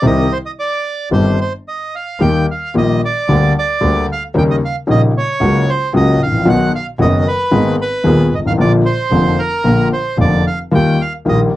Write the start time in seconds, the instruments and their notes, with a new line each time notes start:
0.02 grand piano C2 C3 D#3 G3 C4 G4, double bass C2
0.07 bandoneon D#5
0.33 bandoneon C5
0.46 bandoneon D#5
0.60 bandoneon D5
1.11 double bass G1, grand piano G1 G2 D#3 G3 C4 G4, bandoneon C5
1.41 bandoneon C5
1.68 bandoneon D#5
1.95 bandoneon F5
2.20 double bass D#2, grand piano D#2 D#3 G3 A#3 G4, bandoneon G5
2.51 bandoneon F5
2.74 double bass A#1, grand piano A#1 A#2 D#3 G3 A#3 G4, bandoneon D#5
3.05 bandoneon D5
3.28 double bass D2, grand piano D2 D3 G3 A#3 G4
3.59 bandoneon D5
3.81 grand piano D2 D3 G3 A#3 G4, double bass D2
4.12 bandoneon F5
4.34 grand piano D#2 C#3 D#3 G3 A#3 D#4, double bass D#2, bandoneon G5
4.51 bandoneon D#5
4.65 bandoneon F5
4.87 grand piano A#1 A#2 C#3 G3 A#3 D#4, double bass A#1, bandoneon D#5
5.18 bandoneon C#5
5.40 grand piano C#2 C#3 F#3 A#3 F#4, double bass C#2
5.70 bandoneon C5
5.93 double bass C#2, grand piano C#2 C#3 F#3 A#3 F#4, bandoneon D#5
6.19 double bass A1, bandoneon F5
6.26 grand piano G#1
6.32 grand piano A1
6.38 grand piano A#1
6.45 double bass B1, grand piano B1 B2 D#3 F#3 B3 F#4, bandoneon F#5
6.75 bandoneon F5
6.99 double bass F#1, grand piano F#1 F#2 D#3 F#3 B3 F#4, bandoneon D#5
7.28 bandoneon B4
7.51 grand piano G#1 G#2 D#3 A#3 B3 G#4, double bass G#1
7.81 bandoneon B4
8.04 grand piano D#1 D#2 D#3 A#3 B3 G#4, double bass D#2
8.32 double bass G#1, bandoneon D#5
8.37 grand piano G1
8.46 grand piano G#1, bandoneon F5
8.51 grand piano A1
8.58 double bass A#1, grand piano A#1 A#2 D3 F3 A#3 F4, bandoneon D5
8.86 bandoneon C5
9.11 double bass F1, grand piano F1 F2 D3 F3 A#3 F4
9.39 bandoneon A#4
9.64 grand piano A#1 A#2 D3 F3 A#3 F4, double bass A#1
9.93 bandoneon C5
10.17 double bass F1, grand piano F1 F2 D3 F3 A#3 F4, bandoneon D5
10.47 bandoneon F5
10.71 grand piano D#2 D#3 G3 A#3 F4, double bass D#2, bandoneon G5
11.01 bandoneon F5
11.25 grand piano A#1 A#2 D#3 G3 A#3 F4, double bass A#1, bandoneon D#5